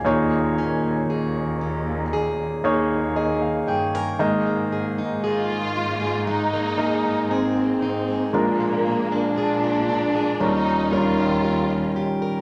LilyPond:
<<
  \new Staff \with { instrumentName = "Grand piano" } { \time 4/4 \key ees \mixolydian \tempo 4 = 58 << { aes''16 r2 r8. ees''16 f''16 g''16 aes''16~ | aes''16 r2. r8. | r1 | } \\ { <bes ees' aes' des''>2 r8 <bes ees' aes' des''>4 r8 | <bes ees' aes' ees''>2 r8 <bes ees' aes' ees''>4. | <aes d' f' bes'>2 <g des' ees' bes'>8 <g des' ees' bes'>4. | } >> }
  \new Staff \with { instrumentName = "Grand piano" } { \clef bass \time 4/4 \key ees \mixolydian bes,4. r2 r8 | <aes, ees>4. r2 r8 | <bes, f>4. r8 bes,4. r8 | }
  \new Staff \with { instrumentName = "Steel-string acoustic guitar" } { \time 4/4 \key ees \mixolydian ees8 des'8 aes'8 des'8 aes'8 des'8 aes'8 aes'16 bes'16 | aes16 bes16 aes'16 ees'16 aes'16 bes16 ees'16 aes'16 aes16 bes16 aes'16 ees'16 aes'16 bes16 ees'16 aes'16 | bes,16 bes16 aes'16 d'16 aes'16 bes16 d'16 aes'16 ees16 des'16 bes'16 g'16 bes'16 des'16 g'16 bes'16 | }
  \new Staff \with { instrumentName = "Violin section" } { \time 4/4 \key ees \mixolydian r1 | r4 f'4 ees'4 c'4 | bes4 d'4 ees'8 f'4 r8 | }
  \new Staff \with { instrumentName = "Cello section" } { \clef bass \time 4/4 \key ees \mixolydian ees,8. ees,16 ees,4. ees,4 g,8 | aes,8. aes,16 aes,4. aes,4 aes,8 | bes,8. bes,4~ bes,16 ees,2 | }
>>